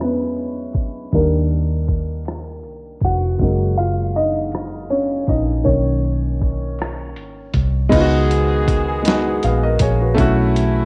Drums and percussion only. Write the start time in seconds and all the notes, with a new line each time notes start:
0.01 cross-stick
0.36 closed hi-hat
0.73 kick, closed hi-hat
1.12 kick, closed hi-hat
1.51 closed hi-hat
1.88 kick, closed hi-hat
2.25 cross-stick, closed hi-hat
2.64 closed hi-hat
3.01 kick, closed hi-hat
3.39 kick, closed hi-hat
3.78 closed hi-hat
4.15 closed hi-hat
4.52 cross-stick, closed hi-hat
4.90 closed hi-hat
5.27 kick, closed hi-hat
5.66 kick, closed hi-hat
6.05 closed hi-hat
6.42 kick, closed hi-hat
6.79 cross-stick, closed hi-hat
7.16 closed hi-hat
7.54 kick, closed hi-hat
7.92 kick, closed hi-hat, crash
8.31 closed hi-hat
8.68 kick, closed hi-hat
9.05 snare, closed hi-hat
9.43 closed hi-hat
9.79 kick, closed hi-hat
10.18 kick, closed hi-hat
10.56 closed hi-hat